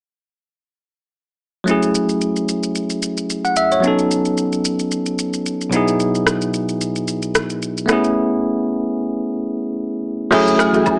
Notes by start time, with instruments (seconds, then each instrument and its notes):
1.64 tine electric piano F#3 A3 C#4, shaker
1.69 tine electric piano E4 G#4
1.83 shaker
1.95 shaker
2.09 shaker
2.21 shaker
2.36 shaker
2.49 shaker
2.63 shaker
2.75 shaker
2.90 shaker
3.02 shaker
3.17 shaker
3.30 shaker
3.45 tine electric piano F#5, shaker
3.56 tine electric piano E5, shaker
3.72 tine electric piano C#5, shaker
3.81 tine electric piano F#3 B3 C#4, shaker
3.86 tine electric piano D#4 A4
3.99 shaker
4.11 shaker
4.25 shaker
4.37 shaker
4.52 shaker
4.65 shaker
4.79 shaker
4.91 shaker
5.06 shaker
5.19 shaker
5.33 shaker
5.46 shaker
5.61 shaker
5.70 tine electric piano B2 F#3 B3, shaker
5.74 tine electric piano D#4 E4 G#4
5.88 shaker
6.00 shaker
6.15 shaker
6.27 cross-stick, shaker
6.41 shaker
6.54 shaker
6.69 shaker
6.81 shaker
6.96 shaker
7.08 shaker
7.22 shaker
7.35 cross-stick, shaker
7.50 shaker
7.62 shaker
7.77 shaker
7.86 tine electric piano A3 B3 C#4, cross-stick, shaker
7.91 tine electric piano E4 G#4
8.04 shaker
10.31 analog synth pad E3 A3 F#4 G#5, tine electric piano F#3 A3 C#4 E4 G#4, marimba F#4 G#4 A4 E5, kick, crash, impact, shaker
10.47 shaker
10.59 cross-stick, high agogo, shaker
10.74 marimba F#4 G#4 A4 E5, shaker
10.86 kick, low woodblock, shaker